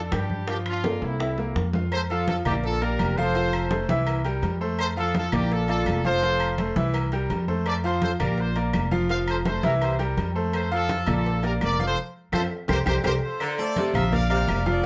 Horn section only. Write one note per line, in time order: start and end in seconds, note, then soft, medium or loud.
0.06 0.12 A4 medium
0.14 0.48 D4 medium
0.14 0.48 G4 medium
0.49 0.57 D4 medium
0.49 0.57 G4 loud
0.67 1.00 D4 medium
0.67 1.00 F4 medium
1.03 1.57 C4 medium
1.03 1.56 E4 medium
1.93 2.01 A4 medium
1.93 2.00 C5 loud
2.10 2.27 F4 medium
2.10 2.26 A4 medium
2.29 2.37 F4 medium
2.29 2.36 A4 medium
2.47 2.55 E4 medium
2.47 2.54 G4 medium
2.64 2.81 F4 medium
2.64 2.80 A4 loud
2.82 3.18 G4 medium
2.82 3.17 A#4 medium
3.16 3.89 A4 medium
3.16 3.88 C5 loud
4.80 4.87 A4 medium
4.80 4.87 C5 loud
4.98 5.15 F4 medium
4.98 5.14 A4 loud
5.17 5.33 F4 medium
5.17 5.32 A4 loud
5.35 5.52 E4 medium
5.35 5.52 G4 medium
5.53 5.69 F4 medium
5.53 5.68 A4 loud
5.69 6.03 F4 medium
5.69 6.02 A4 medium
6.05 6.73 A4 medium
6.05 6.73 C5 loud
7.67 7.76 A4 medium
7.67 7.75 D5 loud
7.85 8.01 A4 medium
7.85 8.01 C5 medium
8.03 8.11 A4 medium
8.03 8.11 C5 loud
8.22 8.38 G4 medium
8.22 8.38 A#4 medium
8.39 8.56 F4 medium
8.39 8.57 C5 medium
9.10 9.19 C5 medium
9.10 9.18 F5 loud
9.29 9.37 A4 medium
9.29 9.36 C5 medium
9.46 9.63 A4 medium
9.46 9.62 C5 medium
9.65 9.73 G4 medium
9.65 9.73 A#4 medium
9.82 9.98 G4 medium
9.82 9.99 C5 medium
10.55 10.71 A4 medium
10.55 10.71 C5 loud
10.74 11.11 F4 medium
10.74 11.12 A4 loud
11.15 11.42 F4 medium
11.15 11.42 A4 medium
11.45 11.53 G4 medium
11.45 11.53 A#4 medium
11.63 11.85 A#4 medium
11.63 11.84 D5 loud
11.87 11.97 A4 medium
11.87 11.97 C5 loud
12.34 12.42 F4 loud
12.34 12.42 A4 loud
12.34 12.42 C5 loud
12.70 12.78 G4 loud
12.70 12.78 A#4 loud
12.70 12.78 C5 loud
12.87 12.96 G4 medium
12.87 12.95 A#4 medium
12.87 12.95 C5 loud
13.05 13.14 G4 loud
13.05 13.13 A#4 loud
13.05 13.14 C5 loud